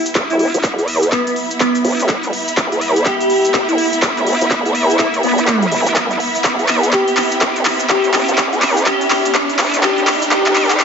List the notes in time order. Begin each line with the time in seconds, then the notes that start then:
Already playing: B3 E4 E5, riser
0.06 closed hi-hat, cabasa
0.15 E1 B5, kick, clap, cabasa
0.30 E4, closed hi-hat, cabasa
0.39 open hi-hat
0.54 E1, closed hi-hat, cabasa
0.64 E1, kick, clap, cabasa
0.78 E2, closed hi-hat, cabasa
0.88 open hi-hat
1.03 closed hi-hat, cabasa
1.12 B3, kick, clap, cabasa
1.27 B3, closed hi-hat, cabasa
1.36 open hi-hat
1.51 closed hi-hat, cabasa
1.60 B3, kick, clap, cabasa
1.75 closed hi-hat, cabasa
1.85 E1, open hi-hat
2.00 closed hi-hat, cabasa
2.08 kick, clap, cabasa
2.23 closed hi-hat, cabasa
2.33 open hi-hat
2.48 closed hi-hat, cabasa
2.57 E1, kick, clap, cabasa
2.72 E2, closed hi-hat, cabasa
2.81 open hi-hat
2.96 closed hi-hat, cabasa
3.06 G4, kick, clap, cabasa
3.21 closed hi-hat, cabasa
3.30 open hi-hat
3.45 closed hi-hat, cabasa
3.54 G1, kick, clap, cabasa
3.69 E4, closed hi-hat, cabasa
3.78 E4, open hi-hat
3.93 closed hi-hat, cabasa
4.02 E1, kick, clap, cabasa
4.17 closed hi-hat, cabasa
4.27 open hi-hat
4.41 E1, closed hi-hat, cabasa
4.51 E1, kick, clap, cabasa
4.66 E2, closed hi-hat, cabasa
4.75 open hi-hat
4.90 E4, closed hi-hat, cabasa
4.99 E2 E4, kick, clap, cabasa
5.14 closed hi-hat, cabasa
5.23 E1 B3, open hi-hat
5.38 closed hi-hat, cabasa
5.47 kick, clap, cabasa
5.62 E2, closed hi-hat, cabasa
5.72 G1, open hi-hat
5.87 closed hi-hat, cabasa
5.95 kick, clap, cabasa
6.11 closed hi-hat, cabasa
6.20 open hi-hat
6.35 closed hi-hat, cabasa
6.44 E1, kick, clap, cabasa
6.59 E2, closed hi-hat, cabasa
6.68 clap, open hi-hat
6.83 closed hi-hat, cabasa
6.92 G4, kick, clap, cabasa
7.08 closed hi-hat, cabasa
7.17 clap, open hi-hat
7.32 closed hi-hat, cabasa
7.41 G1, kick, clap, cabasa
7.56 closed hi-hat, cabasa
7.65 clap, open hi-hat
7.80 closed hi-hat, cabasa
7.89 E1 G4, kick, clap, cabasa
8.04 closed hi-hat, cabasa
8.14 clap, open hi-hat
8.28 E1, closed hi-hat, cabasa
8.37 E1, kick, clap, cabasa
8.53 E2, closed hi-hat, cabasa
8.62 clap, open hi-hat
8.77 closed hi-hat, cabasa
8.86 G4, kick, clap, cabasa
9.01 closed hi-hat, cabasa
9.10 clap, open hi-hat
9.25 closed hi-hat, cabasa
9.34 kick, clap, cabasa
9.50 closed hi-hat, cabasa
9.59 E1, clap, open hi-hat
9.74 closed hi-hat, cabasa
9.83 G4, kick, clap, cabasa
9.98 closed hi-hat, cabasa
10.07 clap, open hi-hat
10.22 closed hi-hat, cabasa
10.31 E1 G4, kick, clap, cabasa
10.46 E2, clap, closed hi-hat, cabasa
10.56 clap, open hi-hat
10.70 clap, closed hi-hat, cabasa
10.80 G4, kick, clap, cabasa